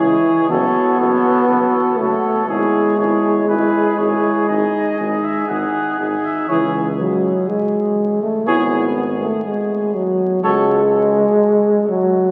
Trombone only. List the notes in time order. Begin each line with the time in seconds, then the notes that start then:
Already playing: E3
0.50 B3
1.98 A3
2.47 G#3
6.50 E3
6.99 F#3
7.48 G#3
8.23 A3
8.47 B3
9.21 A3
9.45 G#3
9.95 F#3
10.44 G#3
11.89 F#3